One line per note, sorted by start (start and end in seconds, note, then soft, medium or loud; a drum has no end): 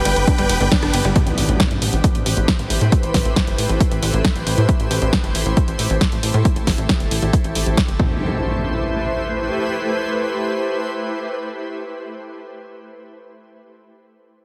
0.00 1.12 B3 medium
0.00 1.12 D4 medium
0.00 1.12 G4 medium
0.00 1.07 B4 medium
0.00 1.07 G5 loud
0.05 0.14 G1 loud
0.05 0.09 G3 medium
0.05 open hi-hat medium
0.05 ride medium
0.16 0.25 G1 medium
0.16 closed hi-hat soft
0.27 0.33 D4 medium
0.27 kick loud
0.27 closed hi-hat medium
0.38 0.47 G1 medium
0.38 0.42 G3 loud
0.38 closed hi-hat soft
0.49 0.58 F1 loud
0.49 open hi-hat loud
0.49 ride medium
0.60 0.69 G1 loud
0.60 0.65 G3 medium
0.60 closed hi-hat soft
0.72 0.76 D4 loud
0.72 kick loud
0.72 snare loud
0.72 closed hi-hat medium
0.83 0.91 G1 medium
0.83 0.85 D4 loud
0.83 cross-stick medium
0.83 closed hi-hat soft
0.94 1.02 G1 loud
0.94 1.00 B4 medium
0.94 open hi-hat medium
0.94 ride medium
1.05 1.13 G1 medium
1.05 1.11 G3 loud
1.05 closed hi-hat soft
1.16 7.96 A3 medium
1.16 7.96 E4 medium
1.16 7.96 G4 medium
1.16 4.65 B4 medium
1.16 7.96 C5 medium
1.16 kick loud
1.16 closed hi-hat medium
1.16 impact medium
1.27 1.35 A1 medium
1.27 closed hi-hat soft
1.38 1.46 A1 loud
1.38 open hi-hat loud
1.49 1.57 A1 medium
1.49 closed hi-hat soft
1.60 kick loud
1.60 snare loud
1.60 closed hi-hat medium
1.71 1.80 G1 medium
1.71 closed hi-hat soft
1.82 1.91 A1 loud
1.82 open hi-hat medium
1.93 2.02 A1 medium
1.93 closed hi-hat soft
2.04 kick loud
2.04 closed hi-hat medium
2.15 2.24 A1 medium
2.15 closed hi-hat soft
2.26 2.35 A1 loud
2.26 open hi-hat loud
2.37 2.46 A1 medium
2.37 closed hi-hat soft
2.48 kick loud
2.48 snare loud
2.48 closed hi-hat medium
2.59 2.68 A1 medium
2.59 closed hi-hat soft
2.70 2.79 A1 loud
2.70 open hi-hat medium
2.81 2.90 A2 medium
2.81 closed hi-hat soft
2.92 kick loud
2.92 closed hi-hat medium
3.03 3.12 A1 medium
3.03 closed hi-hat soft
3.14 3.23 A1 loud
3.14 kick medium
3.14 snare medium
3.14 open hi-hat loud
3.25 3.34 A1 medium
3.25 closed hi-hat soft
3.36 kick loud
3.36 snare loud
3.36 closed hi-hat medium
3.47 3.56 G1 medium
3.47 closed hi-hat soft
3.58 3.67 A1 loud
3.58 open hi-hat medium
3.69 3.78 A1 medium
3.69 closed hi-hat soft
3.80 kick loud
3.80 closed hi-hat medium
3.92 4.00 A1 medium
3.92 closed hi-hat soft
4.03 4.11 A1 loud
4.03 open hi-hat loud
4.14 4.22 A1 medium
4.14 closed hi-hat soft
4.25 kick loud
4.25 snare loud
4.25 closed hi-hat medium
4.36 4.44 A1 medium
4.36 closed hi-hat soft
4.47 4.55 A1 loud
4.47 open hi-hat medium
4.58 4.66 A2 medium
4.58 closed hi-hat soft
4.69 7.96 A4 medium
4.69 kick loud
4.69 closed hi-hat medium
4.80 4.88 A1 medium
4.80 closed hi-hat soft
4.91 4.99 A1 medium
4.91 open hi-hat loud
5.02 5.10 A1 medium
5.02 closed hi-hat soft
5.13 kick loud
5.13 snare loud
5.13 closed hi-hat medium
5.24 5.32 G1 medium
5.24 closed hi-hat soft
5.35 5.43 A1 loud
5.35 open hi-hat medium
5.46 5.55 A1 medium
5.46 closed hi-hat soft
5.57 kick loud
5.57 closed hi-hat medium
5.68 5.77 A1 medium
5.68 closed hi-hat soft
5.79 5.88 A1 loud
5.79 open hi-hat loud
5.90 5.99 A1 loud
5.90 closed hi-hat soft
6.01 kick loud
6.01 snare loud
6.01 closed hi-hat medium
6.12 6.21 A1 medium
6.12 closed hi-hat soft
6.23 6.32 A1 loud
6.23 open hi-hat loud
6.34 6.43 A2 medium
6.34 closed hi-hat soft
6.45 kick loud
6.45 closed hi-hat medium
6.56 6.65 A1 medium
6.56 closed hi-hat soft
6.67 6.76 A1 medium
6.67 kick medium
6.67 snare medium
6.67 open hi-hat loud
6.78 6.87 A1 medium
6.78 closed hi-hat soft
6.89 kick loud
6.89 snare loud
6.89 closed hi-hat medium
7.00 7.09 G1 medium
7.00 closed hi-hat soft
7.11 7.20 A1 loud
7.11 open hi-hat medium
7.22 7.31 A1 medium
7.22 closed hi-hat soft
7.33 kick loud
7.33 closed hi-hat medium
7.44 7.53 A1 medium
7.44 closed hi-hat soft
7.55 7.64 A1 medium
7.55 open hi-hat loud
7.66 7.75 A1 loud
7.66 closed hi-hat soft
7.77 kick loud
7.77 snare loud
7.77 closed hi-hat medium
7.88 7.97 G1 medium
7.88 closed hi-hat soft
8.00 9.50 A1 medium
8.00 12.19 A3 medium
8.00 12.19 E4 medium
8.00 12.19 G4 medium
8.00 12.19 B4 medium
8.00 12.19 C5 medium
8.00 kick loud
8.00 impact medium